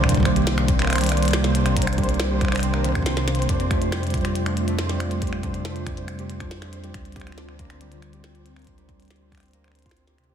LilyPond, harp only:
\new Staff \with { instrumentName = "Harp" } { \time 4/4 \key c \minor \tempo 4 = 139 g16 r8 g'16 c'16 d'16 c'16 bes16 c''16 g16 r8 g'16 c'16 d'16 c'16 | bes16 c''16 g16 r8 g'16 c'16 d'16 c'16 bes16 c16 g'16 c'16 c''16 r16 c'16 | d'16 c'16 a16 c''16 g16 r8 g'16 c'16 d'16 c'16 a16 c''16 g16 r8 | g'16 c'16 d'16 c'16 a16 c''16 g16 r8 g'16 c'16 d'16 c'16 a16 c''16 g16 |
r8 g'16 c'16 d'16 c'16 bes16 c''16 g16 r8 g'16 c'16 d'16 c'16 bes16 | c''16 g16 r8 g'16 c'16 d'16 c'16 bes16 c''16 c''16 f'16 c'16 g'16 c16 g'16 | }